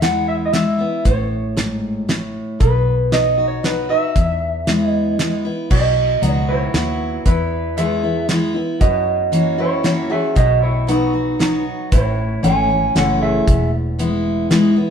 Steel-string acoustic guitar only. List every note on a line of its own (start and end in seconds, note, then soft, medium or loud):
0.00 0.48 E2 medium
0.00 0.51 E3 medium
0.00 0.51 G#3 medium
0.00 0.51 B3 medium
0.00 0.51 E4 medium
0.53 0.78 E3 medium
0.53 0.78 G#3 medium
0.53 0.78 B3 medium
0.53 0.77 E4 medium
0.78 1.05 B3 medium
0.78 1.04 E4 medium
1.05 2.03 A2 medium
1.57 2.06 G#2 medium
2.08 2.58 A2 medium
2.60 3.59 B2 medium
3.12 3.37 F#3 medium
3.12 3.37 B3 medium
3.12 3.37 D#4 medium
3.12 3.37 F#4 medium
3.38 3.63 D#4 soft
3.38 3.63 F#4 soft
3.63 3.88 F#3 soft
3.63 3.89 B3 medium
3.63 3.89 D#4 medium
3.63 3.88 F#4 medium
3.89 4.15 D#4 soft
3.89 4.14 F#4 medium
4.16 5.14 E2 medium
4.67 5.16 E3 soft
4.67 5.17 G#3 medium
4.67 5.17 B3 medium
4.67 5.17 E4 medium
5.19 5.44 E3 soft
5.19 5.44 G#3 medium
5.19 5.44 B3 medium
5.19 5.44 E4 medium
5.45 5.70 B3 soft
5.45 5.70 E4 medium
5.70 6.69 B2 medium
6.22 6.71 F#3 medium
6.22 6.72 B3 medium
6.22 6.72 D#4 medium
6.22 6.72 F#4 medium
6.74 7.23 F#3 medium
6.74 7.23 B3 medium
6.74 7.24 F#4 medium
7.26 8.24 E2 medium
7.77 8.02 E3 medium
7.77 8.02 G#3 medium
7.77 8.03 B3 medium
7.77 8.02 E4 medium
8.03 8.28 B3 soft
8.03 8.28 E4 medium
8.29 8.54 E3 medium
8.29 8.54 G#3 medium
8.29 8.54 B3 medium
8.29 8.53 E4 medium
8.54 8.80 B3 soft
8.54 8.80 E4 medium
8.81 9.79 F#2 medium
9.32 9.57 E3 medium
9.32 9.58 A#3 medium
9.32 9.58 C#4 medium
9.32 9.57 F#4 medium
9.58 9.83 C#4 soft
9.58 9.83 F#4 medium
9.83 10.09 E3 medium
9.83 10.09 A#3 medium
9.83 10.09 C#4 medium
9.83 10.08 F#4 medium
10.10 10.36 C#4 soft
10.10 10.35 F#4 medium
10.36 11.34 B2 medium
10.87 11.12 F#3 medium
10.87 11.13 B3 medium
10.87 11.13 D#4 medium
10.87 11.12 F#4 medium
11.13 11.39 D#4 soft
11.13 11.39 F#4 medium
11.39 11.89 F#3 medium
11.39 11.89 B3 medium
11.39 11.89 D#4 medium
11.39 11.90 F#4 medium
11.92 12.90 A2 medium
12.43 12.68 E3 medium
12.43 12.68 A3 medium
12.43 12.68 C#4 medium
12.43 12.68 E4 medium
12.69 12.95 C#4 soft
12.69 12.94 E4 medium
12.95 13.44 E3 medium
12.95 13.45 A3 medium
12.95 13.45 C#4 medium
12.95 13.45 E4 loud
13.48 14.46 E2 medium
13.99 14.48 E3 medium
13.99 14.48 G#3 medium
13.99 14.48 B3 medium
13.99 14.49 E4 medium
14.50 14.75 E3 medium
14.50 14.76 G#3 medium
14.50 14.76 B3 medium
14.50 14.75 E4 loud
14.76 14.90 B3 medium
14.76 14.90 E4 medium